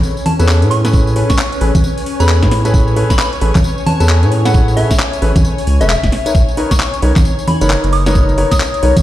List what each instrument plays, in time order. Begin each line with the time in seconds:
Already playing: ambient pad C#4 B4 C#5 G#5 A#5, string machine C#5
0.03 tambourine
0.17 tambourine
0.26 synth bell A5, open hi-hat, high conga
0.39 sub bass E2, grand piano C#4 G#4 A4 B4, synth bell A5, closed hi-hat, tambourine
0.48 clap, tambourine
0.62 sub bass A2, closed hi-hat, tambourine
0.70 synth bell C#6, open hi-hat
0.85 grand piano C#4 G#4 A4 B4, snare, closed hi-hat, tambourine
0.93 kick, tambourine
1.07 tambourine
1.16 grand piano C#4 G#4 A4 B4, open hi-hat
1.30 synth bell C#6, kick, snare, closed hi-hat, tambourine
1.39 clap, tambourine
1.52 closed hi-hat, tambourine
1.61 sub bass A1, grand piano C#4 G#4 A4 B4, open hi-hat
1.75 kick, closed hi-hat, tambourine, high conga
1.84 tambourine
1.98 open hi-hat, tambourine
2.06 open hi-hat
2.20 sub bass E2, grand piano C#4 G#4 A4 B4, synth bell B5, closed hi-hat, tambourine
2.29 clap, tambourine
2.42 sub bass A2, kick, snare, closed hi-hat, tambourine
2.51 snare, open hi-hat
2.65 grand piano C#4 G#4 A4 B4, closed hi-hat, tambourine
2.74 kick, tambourine
2.88 tambourine
2.96 grand piano C#4 G#4 A4 B4, open hi-hat
3.10 synth bell B5, kick, snare, closed hi-hat, tambourine
3.19 synth bell B5, clap, tambourine
3.33 closed hi-hat, tambourine
3.41 sub bass A1, grand piano C#4 G#4 A4 B4, open hi-hat
3.55 kick, clap, closed hi-hat, tambourine, high conga
3.64 tambourine
3.78 tambourine
3.86 synth bell A5, open hi-hat, high conga
4.00 sub bass E2, grand piano C#4 G#4 A4 B4, synth bell A5, closed hi-hat, tambourine
4.09 clap, tambourine
4.23 sub bass A2, closed hi-hat, tambourine
4.32 open hi-hat
4.45 grand piano C#4 G#4 A4 B4, synth bell F#5, snare, closed hi-hat, tambourine
4.54 kick, tambourine
4.68 tambourine
4.76 grand piano C#4 G#4 A4 B4, synth bell E5, open hi-hat
4.91 kick, snare, closed hi-hat, tambourine
4.99 clap, tambourine
5.13 closed hi-hat, tambourine
5.22 sub bass A1, grand piano C#4 G#4 A4 B4, open hi-hat
5.36 kick, closed hi-hat, tambourine, high conga
5.45 tambourine
5.58 open hi-hat, tambourine
5.67 sub bass C#2, open hi-hat
5.81 sub bass E1, grand piano C#4 G#4 A4 B4, synth bell E5, closed hi-hat, tambourine
5.90 synth bell E5, clap, tambourine
6.03 sub bass E1, kick, snare, closed hi-hat, tambourine
6.12 ambient pad D#4, snare, open hi-hat
6.26 grand piano D#4 A#4 B4 C#5, closed hi-hat, tambourine
6.35 kick, tambourine
6.39 ambient pad C#5
6.48 tambourine
6.57 grand piano D#4 A#4 B4 C#5, open hi-hat
6.71 synth bell C#6, kick, snare, closed hi-hat, tambourine
6.80 synth bell C#6, clap, tambourine
6.92 ambient pad A#5, closed hi-hat, tambourine
7.02 sub bass B1, grand piano D#4 A#4 B4 C#5, open hi-hat
7.16 kick, clap, closed hi-hat, tambourine, high conga
7.25 tambourine
7.39 tambourine
7.48 synth bell B5, open hi-hat, high conga
7.61 sub bass F#1, grand piano D#4 A#4 B4 C#5, synth bell B5, closed hi-hat, tambourine
7.70 clap, tambourine
7.84 sub bass F#1, closed hi-hat, tambourine
7.93 synth bell D#6, open hi-hat
8.06 grand piano D#4 A#4 B4 C#5, snare, closed hi-hat, tambourine
8.15 kick, tambourine
8.29 tambourine
8.38 grand piano D#4 A#4 B4 C#5, open hi-hat
8.51 synth bell D#6, kick, snare, closed hi-hat, tambourine
8.60 clap, tambourine
8.74 closed hi-hat, tambourine
8.83 sub bass B1, grand piano D#4 A#4 B4 C#5, open hi-hat
8.97 kick, closed hi-hat, tambourine, high conga